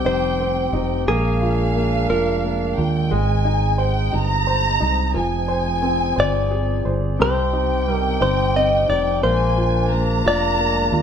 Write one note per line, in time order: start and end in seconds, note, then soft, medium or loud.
0.00 1.03 C3 medium
0.00 1.05 C3 medium
0.00 1.03 G3 soft
0.00 1.06 C4 medium
0.00 0.05 D#4 soft
0.00 1.06 D#4 medium
0.00 1.06 G4 medium
0.00 1.04 G5 medium
0.05 0.70 F1 medium
0.05 0.72 D#4 soft
0.05 1.04 C5 medium
0.40 1.06 C4 medium
0.73 1.05 F1 medium
0.73 1.06 D#4 medium
1.07 2.06 A#1 medium
1.07 5.12 G#3 medium
1.07 3.09 A#3 medium
1.07 1.74 A#3 medium
1.07 3.10 D4 medium
1.07 2.10 G#4 medium
1.07 2.74 F5 medium
1.42 2.08 F4 soft
1.75 2.41 A#3 soft
2.09 2.74 F1 medium
2.09 2.76 F4 soft
2.09 2.82 A#4 medium
2.43 3.09 A#3 soft
2.77 3.10 D#2 medium
2.77 3.10 F4 soft
2.77 3.11 G5 medium
3.11 4.09 G#1 medium
3.11 5.11 G#3 medium
3.11 9.19 C4 medium
3.11 7.15 D#4 medium
3.11 3.79 G#5 loud
3.45 4.11 D#4 medium
3.78 4.45 C5 soft
3.78 4.14 G5 loud
4.12 4.78 G1 medium
4.12 4.79 D#4 medium
4.12 5.16 A#5 loud
4.47 5.13 C5 medium
4.80 5.13 C2 medium
4.80 5.14 D#4 medium
5.14 6.13 F1 medium
5.14 7.14 F3 medium
5.14 7.17 F3 medium
5.14 7.17 G#4 medium
5.14 6.81 G#5 loud
5.48 6.15 C5 soft
5.82 7.14 C4 soft
6.16 6.81 G1 medium
6.16 6.84 C5 soft
6.16 7.21 D5 medium
6.51 7.17 G#4 soft
6.85 7.17 G1 medium
6.85 7.18 C5 soft
7.19 8.17 C2 medium
7.19 9.19 C3 medium
7.19 9.21 C3 medium
7.19 9.21 D#4 medium
7.19 9.21 G4 medium
7.19 7.94 C5 loud
7.19 9.19 G5 loud
7.53 8.19 D#4 soft
7.87 9.19 G3 soft
7.94 8.21 A#4 loud
8.20 8.85 G1 medium
8.20 8.87 D#4 medium
8.20 8.56 C5 medium
8.56 9.21 C4 soft
8.56 8.89 D#5 loud
8.88 9.21 F1 medium
8.88 9.21 D#4 soft
8.88 9.23 D5 medium
9.22 10.21 A#1 medium
9.22 11.02 G#3 medium
9.22 9.90 A#3 medium
9.22 11.02 A#3 medium
9.22 11.02 D4 medium
9.22 10.21 C5 loud
9.22 9.90 G#5 loud
9.57 10.24 F4 medium
9.91 10.56 A#3 medium
9.91 11.02 A#5 loud
10.25 10.88 F1 medium
10.25 10.91 F4 medium
10.25 11.02 D5 loud
10.58 11.02 A#3 medium
10.92 11.02 D#2 medium
10.92 11.02 F4 medium